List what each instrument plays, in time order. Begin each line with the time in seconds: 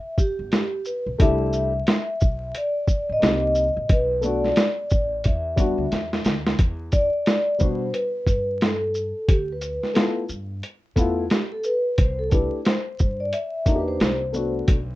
Already playing: vibraphone E5
0.18 vibraphone G4, kick, shaker
0.39 upright bass G1
0.52 snare, closed hi-hat
0.85 vibraphone B4, shaker
1.06 upright bass B1
1.18 upright bass C2, grand piano A3 D4 E4 G4, vibraphone E5, kick, closed hi-hat
1.53 shaker
1.87 snare, closed hi-hat
2.21 upright bass B1, kick, shaker
2.55 vibraphone D5, closed hi-hat
2.88 kick, shaker
3.09 upright bass A1, vibraphone D#5
3.19 upright bass C2, grand piano A#3 C4 D#4 G4, snare, closed hi-hat
3.55 shaker
3.77 upright bass A1
3.89 upright bass B1, vibraphone B4, kick, closed hi-hat
4.21 grand piano A3 B3 D4, shaker
4.25 grand piano F#4, vibraphone D5
4.44 snare
4.56 snare, closed hi-hat
4.90 upright bass A1, kick, shaker
5.24 upright bass E2, vibraphone E5, kick, closed hi-hat
5.56 grand piano G3 B3 D4 F#4, kick, closed hi-hat, shaker
5.78 upright bass D2
5.91 upright bass E2, snare, closed hi-hat
6.13 snare
6.25 upright bass D2, snare, closed hi-hat, shaker
6.47 snare
6.59 upright bass E2, kick, closed hi-hat
6.92 vibraphone D5, kick, closed hi-hat, shaker
7.26 snare, closed hi-hat
7.58 upright bass B2, grand piano G3 B3 D4 F#4, vibraphone C5, kick, shaker
7.93 vibraphone B4, closed hi-hat
8.27 upright bass G2, kick, closed hi-hat, shaker
8.61 vibraphone A4, snare, closed hi-hat
8.95 shaker
9.28 upright bass D2, vibraphone G4, kick, closed hi-hat
9.52 vibraphone B4
9.61 closed hi-hat, shaker
9.83 snare
9.94 grand piano A3 B3 E4 F4, snare, closed hi-hat
10.29 upright bass G2, shaker
10.63 closed hi-hat
10.96 upright bass E2, grand piano A3 B3 E4 F4, kick, closed hi-hat, shaker
11.30 vibraphone G4, snare, closed hi-hat
11.52 vibraphone A4
11.64 vibraphone B4, shaker
11.98 upright bass C2, vibraphone C5, kick, closed hi-hat
12.19 vibraphone A4
12.30 grand piano A3 D4 E4, vibraphone B4, kick, closed hi-hat, shaker
12.34 grand piano G4
12.65 vibraphone C5, snare, closed hi-hat
12.99 upright bass G2, kick, shaker
13.20 vibraphone D5
13.33 vibraphone E5, closed hi-hat
13.65 upright bass E2, grand piano A#3 D4 D#4 F#4, kick, closed hi-hat, shaker
13.76 grand piano G4
13.80 vibraphone B4
13.88 vibraphone C5
14.00 upright bass C2, snare, closed hi-hat
14.33 grand piano A3 B3 D4 F#4, shaker
14.68 upright bass B1, kick, closed hi-hat